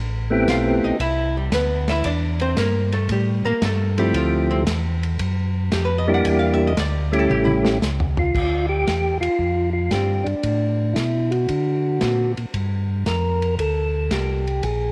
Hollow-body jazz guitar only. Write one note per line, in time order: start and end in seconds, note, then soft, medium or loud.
0.50 0.83 F4 medium
0.50 0.83 F5 medium
0.84 1.00 D#4 medium
0.84 1.00 D#5 medium
1.01 1.35 E4 medium
1.01 1.35 E5 loud
1.37 1.52 G3 soft
1.37 1.53 G4 medium
1.54 1.88 B3 medium
1.54 1.88 B4 medium
1.89 2.05 E4 medium
1.89 2.05 E5 loud
2.05 2.41 D4 medium
2.05 2.40 D5 medium
2.41 2.57 C4 medium
2.41 2.57 C5 medium
2.58 2.93 A#3 medium
2.58 2.92 A#4 medium
2.93 3.09 A3 medium
2.93 3.09 A4 medium
3.11 3.45 G3 medium
3.11 3.45 G4 medium
3.45 3.62 A#3 medium
3.45 3.62 A#4 loud
3.65 3.99 A3 medium
3.65 3.98 A4 medium
3.99 4.15 G3 medium
3.99 4.15 G4 medium
4.16 4.51 F3 medium
4.16 4.50 F4 medium
4.51 4.61 C3 medium
4.51 4.60 C4 medium
5.73 5.90 G4 medium
5.85 6.05 B4 medium
5.98 6.11 D#5 medium
6.14 6.26 F#5 medium
6.26 6.39 G5 loud
6.39 6.53 F5 medium
6.54 6.65 E5 loud
6.67 6.76 D#5 medium
6.80 7.19 D5 medium
7.19 7.28 A4 medium
7.31 7.45 G4 medium
7.45 7.56 E4 medium
9.93 10.24 D3 medium
9.93 10.25 G3 medium
9.93 10.25 C4 medium
9.93 10.25 F4 medium
12.01 12.33 D3 medium
12.01 12.34 A#3 medium
12.01 12.34 C4 medium
12.01 12.34 F#4 medium
14.12 14.44 G3 medium
14.12 14.44 A#3 medium
14.12 14.44 F4 medium
14.12 14.44 A4 medium